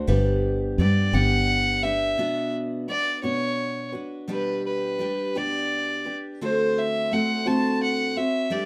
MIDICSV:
0, 0, Header, 1, 5, 480
1, 0, Start_track
1, 0, Key_signature, 2, "minor"
1, 0, Tempo, 701754
1, 60, Time_signature, 6, 3, 24, 8
1, 5920, End_track
2, 0, Start_track
2, 0, Title_t, "Fiddle"
2, 0, Program_c, 0, 110
2, 544, Note_on_c, 0, 74, 63
2, 778, Note_on_c, 0, 78, 78
2, 788, Note_off_c, 0, 74, 0
2, 1252, Note_on_c, 0, 76, 68
2, 1262, Note_off_c, 0, 78, 0
2, 1735, Note_off_c, 0, 76, 0
2, 1975, Note_on_c, 0, 74, 66
2, 2200, Note_off_c, 0, 74, 0
2, 2212, Note_on_c, 0, 73, 64
2, 2668, Note_off_c, 0, 73, 0
2, 2952, Note_on_c, 0, 71, 53
2, 3169, Note_off_c, 0, 71, 0
2, 3190, Note_on_c, 0, 71, 58
2, 3672, Note_on_c, 0, 74, 60
2, 3683, Note_off_c, 0, 71, 0
2, 4206, Note_off_c, 0, 74, 0
2, 4395, Note_on_c, 0, 72, 66
2, 4639, Note_on_c, 0, 76, 66
2, 4650, Note_off_c, 0, 72, 0
2, 4875, Note_on_c, 0, 78, 65
2, 4886, Note_off_c, 0, 76, 0
2, 5111, Note_on_c, 0, 81, 67
2, 5121, Note_off_c, 0, 78, 0
2, 5346, Note_off_c, 0, 81, 0
2, 5352, Note_on_c, 0, 78, 63
2, 5590, Note_on_c, 0, 76, 66
2, 5600, Note_off_c, 0, 78, 0
2, 5824, Note_on_c, 0, 74, 63
2, 5834, Note_off_c, 0, 76, 0
2, 5920, Note_off_c, 0, 74, 0
2, 5920, End_track
3, 0, Start_track
3, 0, Title_t, "Kalimba"
3, 0, Program_c, 1, 108
3, 58, Note_on_c, 1, 71, 56
3, 1231, Note_off_c, 1, 71, 0
3, 5920, End_track
4, 0, Start_track
4, 0, Title_t, "Steel-string acoustic guitar"
4, 0, Program_c, 2, 25
4, 50, Note_on_c, 2, 55, 55
4, 51, Note_on_c, 2, 62, 59
4, 52, Note_on_c, 2, 59, 60
4, 55, Note_on_c, 2, 67, 66
4, 59, Note_on_c, 2, 71, 60
4, 527, Note_off_c, 2, 59, 0
4, 534, Note_off_c, 2, 55, 0
4, 535, Note_off_c, 2, 62, 0
4, 535, Note_on_c, 2, 59, 41
4, 536, Note_off_c, 2, 67, 0
4, 539, Note_off_c, 2, 71, 0
4, 544, Note_on_c, 2, 67, 48
4, 545, Note_on_c, 2, 62, 50
4, 553, Note_on_c, 2, 71, 48
4, 766, Note_off_c, 2, 67, 0
4, 767, Note_off_c, 2, 71, 0
4, 770, Note_off_c, 2, 62, 0
4, 774, Note_off_c, 2, 59, 0
4, 774, Note_on_c, 2, 67, 55
4, 776, Note_on_c, 2, 71, 55
4, 779, Note_on_c, 2, 62, 50
4, 782, Note_on_c, 2, 59, 48
4, 783, Note_on_c, 2, 55, 48
4, 1244, Note_off_c, 2, 71, 0
4, 1247, Note_off_c, 2, 67, 0
4, 1252, Note_on_c, 2, 71, 44
4, 1255, Note_on_c, 2, 67, 38
4, 1256, Note_off_c, 2, 62, 0
4, 1260, Note_off_c, 2, 55, 0
4, 1260, Note_off_c, 2, 59, 0
4, 1264, Note_on_c, 2, 62, 38
4, 1488, Note_off_c, 2, 62, 0
4, 1488, Note_on_c, 2, 47, 53
4, 1495, Note_off_c, 2, 71, 0
4, 1496, Note_off_c, 2, 67, 0
4, 1496, Note_on_c, 2, 59, 46
4, 1496, Note_on_c, 2, 62, 54
4, 1499, Note_on_c, 2, 66, 51
4, 1502, Note_on_c, 2, 71, 57
4, 1969, Note_off_c, 2, 59, 0
4, 1972, Note_on_c, 2, 59, 43
4, 1973, Note_off_c, 2, 47, 0
4, 1974, Note_off_c, 2, 62, 0
4, 1975, Note_off_c, 2, 66, 0
4, 1976, Note_on_c, 2, 62, 39
4, 1983, Note_on_c, 2, 66, 39
4, 1984, Note_off_c, 2, 71, 0
4, 1987, Note_on_c, 2, 71, 41
4, 2201, Note_off_c, 2, 71, 0
4, 2203, Note_off_c, 2, 66, 0
4, 2206, Note_off_c, 2, 62, 0
4, 2209, Note_off_c, 2, 59, 0
4, 2209, Note_on_c, 2, 71, 44
4, 2211, Note_on_c, 2, 66, 43
4, 2214, Note_on_c, 2, 62, 40
4, 2215, Note_on_c, 2, 47, 35
4, 2217, Note_on_c, 2, 59, 39
4, 2676, Note_off_c, 2, 71, 0
4, 2680, Note_off_c, 2, 66, 0
4, 2684, Note_on_c, 2, 71, 33
4, 2688, Note_on_c, 2, 66, 32
4, 2697, Note_off_c, 2, 47, 0
4, 2697, Note_off_c, 2, 62, 0
4, 2698, Note_off_c, 2, 59, 0
4, 2700, Note_on_c, 2, 62, 30
4, 2923, Note_off_c, 2, 62, 0
4, 2925, Note_on_c, 2, 47, 53
4, 2927, Note_on_c, 2, 55, 53
4, 2928, Note_off_c, 2, 71, 0
4, 2931, Note_off_c, 2, 66, 0
4, 2931, Note_on_c, 2, 62, 55
4, 2934, Note_on_c, 2, 67, 55
4, 2937, Note_on_c, 2, 71, 58
4, 3404, Note_off_c, 2, 55, 0
4, 3412, Note_off_c, 2, 47, 0
4, 3412, Note_on_c, 2, 55, 41
4, 3416, Note_off_c, 2, 67, 0
4, 3418, Note_off_c, 2, 71, 0
4, 3419, Note_off_c, 2, 62, 0
4, 3422, Note_on_c, 2, 62, 44
4, 3425, Note_on_c, 2, 67, 43
4, 3429, Note_on_c, 2, 71, 44
4, 3652, Note_off_c, 2, 71, 0
4, 3654, Note_off_c, 2, 67, 0
4, 3656, Note_off_c, 2, 55, 0
4, 3656, Note_off_c, 2, 62, 0
4, 3661, Note_on_c, 2, 71, 49
4, 3663, Note_on_c, 2, 67, 41
4, 3664, Note_on_c, 2, 62, 39
4, 3668, Note_on_c, 2, 55, 38
4, 3670, Note_on_c, 2, 47, 38
4, 4134, Note_off_c, 2, 71, 0
4, 4138, Note_off_c, 2, 67, 0
4, 4142, Note_on_c, 2, 71, 36
4, 4144, Note_off_c, 2, 55, 0
4, 4145, Note_off_c, 2, 47, 0
4, 4146, Note_on_c, 2, 67, 32
4, 4148, Note_off_c, 2, 62, 0
4, 4151, Note_on_c, 2, 62, 28
4, 4381, Note_off_c, 2, 71, 0
4, 4383, Note_off_c, 2, 67, 0
4, 4386, Note_off_c, 2, 62, 0
4, 4387, Note_on_c, 2, 50, 51
4, 4389, Note_on_c, 2, 60, 51
4, 4391, Note_on_c, 2, 57, 53
4, 4393, Note_on_c, 2, 72, 58
4, 4395, Note_on_c, 2, 66, 58
4, 4859, Note_off_c, 2, 57, 0
4, 4864, Note_off_c, 2, 50, 0
4, 4865, Note_off_c, 2, 60, 0
4, 4867, Note_off_c, 2, 72, 0
4, 4867, Note_on_c, 2, 57, 44
4, 4868, Note_off_c, 2, 66, 0
4, 4875, Note_on_c, 2, 60, 49
4, 4877, Note_on_c, 2, 66, 46
4, 4883, Note_on_c, 2, 72, 49
4, 5092, Note_off_c, 2, 72, 0
4, 5094, Note_off_c, 2, 66, 0
4, 5097, Note_off_c, 2, 60, 0
4, 5100, Note_on_c, 2, 72, 45
4, 5102, Note_off_c, 2, 57, 0
4, 5102, Note_on_c, 2, 66, 45
4, 5105, Note_on_c, 2, 60, 39
4, 5110, Note_on_c, 2, 57, 41
4, 5111, Note_on_c, 2, 50, 38
4, 5569, Note_off_c, 2, 72, 0
4, 5577, Note_on_c, 2, 72, 34
4, 5580, Note_off_c, 2, 66, 0
4, 5584, Note_off_c, 2, 60, 0
4, 5586, Note_off_c, 2, 57, 0
4, 5587, Note_off_c, 2, 50, 0
4, 5589, Note_on_c, 2, 66, 33
4, 5591, Note_on_c, 2, 60, 29
4, 5815, Note_off_c, 2, 60, 0
4, 5815, Note_on_c, 2, 55, 50
4, 5817, Note_off_c, 2, 66, 0
4, 5818, Note_on_c, 2, 62, 53
4, 5820, Note_off_c, 2, 72, 0
4, 5820, Note_on_c, 2, 67, 57
4, 5824, Note_on_c, 2, 71, 58
4, 5920, Note_off_c, 2, 55, 0
4, 5920, Note_off_c, 2, 62, 0
4, 5920, Note_off_c, 2, 67, 0
4, 5920, Note_off_c, 2, 71, 0
4, 5920, End_track
5, 0, Start_track
5, 0, Title_t, "Fingered electric bass"
5, 0, Program_c, 3, 33
5, 54, Note_on_c, 3, 31, 67
5, 535, Note_on_c, 3, 43, 63
5, 545, Note_off_c, 3, 31, 0
5, 765, Note_off_c, 3, 43, 0
5, 774, Note_on_c, 3, 31, 62
5, 1469, Note_off_c, 3, 31, 0
5, 5920, End_track
0, 0, End_of_file